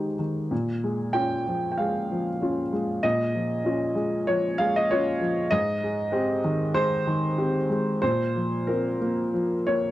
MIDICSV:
0, 0, Header, 1, 2, 480
1, 0, Start_track
1, 0, Tempo, 637620
1, 383, Time_signature, 4, 2, 24, 8
1, 1815, Tempo, 619835
1, 5655, Tempo, 655738
1, 7516, End_track
2, 0, Start_track
2, 0, Title_t, "Upright piano"
2, 0, Program_c, 0, 0
2, 0, Control_c, 0, 64, 127
2, 0, Note_on_c, 0, 51, 40
2, 0, Note_on_c, 0, 56, 41
2, 0, Note_on_c, 0, 63, 38
2, 0, Note_on_c, 0, 67, 40
2, 0, Note_on_c, 0, 72, 73
2, 111, Note_off_c, 0, 63, 0
2, 113, Note_off_c, 0, 67, 0
2, 134, Note_off_c, 0, 72, 0
2, 142, Note_off_c, 0, 51, 0
2, 142, Note_on_c, 0, 51, 41
2, 384, Note_on_c, 0, 46, 51
2, 385, Note_off_c, 0, 51, 0
2, 399, Control_c, 0, 64, 0
2, 402, Note_off_c, 0, 56, 0
2, 499, Control_c, 0, 64, 127
2, 630, Note_on_c, 0, 56, 46
2, 851, Note_on_c, 0, 79, 85
2, 858, Note_on_c, 0, 61, 45
2, 859, Note_on_c, 0, 65, 46
2, 1011, Note_off_c, 0, 56, 0
2, 1076, Note_off_c, 0, 61, 0
2, 1077, Note_off_c, 0, 65, 0
2, 1111, Note_on_c, 0, 53, 45
2, 1280, Note_off_c, 0, 79, 0
2, 1292, Note_on_c, 0, 79, 51
2, 1314, Note_off_c, 0, 46, 0
2, 1336, Note_on_c, 0, 77, 67
2, 1343, Note_off_c, 0, 79, 0
2, 1350, Note_on_c, 0, 56, 45
2, 1487, Note_off_c, 0, 53, 0
2, 1592, Note_on_c, 0, 53, 46
2, 1724, Note_off_c, 0, 56, 0
2, 1818, Note_on_c, 0, 61, 42
2, 1827, Note_on_c, 0, 65, 50
2, 1967, Note_off_c, 0, 53, 0
2, 2034, Note_off_c, 0, 61, 0
2, 2039, Note_off_c, 0, 65, 0
2, 2060, Note_on_c, 0, 56, 47
2, 2294, Note_off_c, 0, 77, 0
2, 2294, Note_on_c, 0, 75, 88
2, 2299, Note_on_c, 0, 46, 58
2, 2312, Control_c, 0, 64, 0
2, 2416, Control_c, 0, 64, 127
2, 2442, Note_off_c, 0, 56, 0
2, 2543, Note_on_c, 0, 53, 46
2, 2772, Note_on_c, 0, 61, 45
2, 2783, Note_on_c, 0, 65, 51
2, 2926, Note_off_c, 0, 53, 0
2, 2992, Note_off_c, 0, 61, 0
2, 2998, Note_off_c, 0, 65, 0
2, 3009, Note_on_c, 0, 56, 49
2, 3235, Note_off_c, 0, 46, 0
2, 3256, Note_on_c, 0, 73, 80
2, 3262, Note_off_c, 0, 75, 0
2, 3267, Note_on_c, 0, 53, 49
2, 3404, Note_off_c, 0, 56, 0
2, 3496, Note_on_c, 0, 77, 96
2, 3504, Note_off_c, 0, 73, 0
2, 3507, Note_on_c, 0, 56, 56
2, 3623, Note_off_c, 0, 77, 0
2, 3635, Note_on_c, 0, 75, 83
2, 3655, Note_off_c, 0, 53, 0
2, 3749, Note_on_c, 0, 73, 88
2, 3753, Note_off_c, 0, 75, 0
2, 3757, Note_on_c, 0, 61, 50
2, 3757, Note_on_c, 0, 65, 56
2, 3894, Note_off_c, 0, 56, 0
2, 3970, Note_off_c, 0, 61, 0
2, 3970, Note_off_c, 0, 65, 0
2, 3984, Note_on_c, 0, 53, 55
2, 4211, Note_on_c, 0, 75, 101
2, 4219, Note_on_c, 0, 44, 69
2, 4225, Note_off_c, 0, 53, 0
2, 4228, Note_off_c, 0, 73, 0
2, 4242, Control_c, 0, 64, 0
2, 4386, Control_c, 0, 64, 127
2, 4467, Note_on_c, 0, 56, 55
2, 4687, Note_on_c, 0, 60, 60
2, 4693, Note_on_c, 0, 67, 63
2, 4838, Note_off_c, 0, 56, 0
2, 4903, Note_off_c, 0, 60, 0
2, 4906, Note_off_c, 0, 67, 0
2, 4937, Note_on_c, 0, 51, 60
2, 5138, Note_off_c, 0, 44, 0
2, 5162, Note_off_c, 0, 75, 0
2, 5171, Note_on_c, 0, 56, 62
2, 5171, Note_on_c, 0, 72, 105
2, 5318, Note_off_c, 0, 51, 0
2, 5425, Note_on_c, 0, 51, 57
2, 5558, Note_off_c, 0, 56, 0
2, 5662, Note_on_c, 0, 60, 51
2, 5665, Note_on_c, 0, 67, 56
2, 5801, Note_off_c, 0, 51, 0
2, 5869, Note_off_c, 0, 60, 0
2, 5871, Note_off_c, 0, 67, 0
2, 5896, Note_on_c, 0, 56, 54
2, 6118, Note_off_c, 0, 72, 0
2, 6129, Note_on_c, 0, 72, 93
2, 6131, Note_off_c, 0, 56, 0
2, 6139, Control_c, 0, 64, 0
2, 6139, Note_on_c, 0, 46, 61
2, 6255, Control_c, 0, 64, 127
2, 6380, Note_on_c, 0, 53, 46
2, 6607, Note_on_c, 0, 70, 66
2, 6610, Note_off_c, 0, 72, 0
2, 6619, Note_on_c, 0, 65, 51
2, 6620, Note_on_c, 0, 60, 45
2, 6760, Note_off_c, 0, 53, 0
2, 6832, Note_off_c, 0, 65, 0
2, 6833, Note_off_c, 0, 60, 0
2, 6861, Note_on_c, 0, 58, 47
2, 7070, Note_off_c, 0, 46, 0
2, 7096, Note_on_c, 0, 53, 45
2, 7243, Note_off_c, 0, 58, 0
2, 7336, Note_on_c, 0, 73, 81
2, 7342, Note_on_c, 0, 58, 44
2, 7481, Note_off_c, 0, 53, 0
2, 7516, Note_off_c, 0, 58, 0
2, 7516, Note_off_c, 0, 70, 0
2, 7516, Note_off_c, 0, 73, 0
2, 7516, End_track
0, 0, End_of_file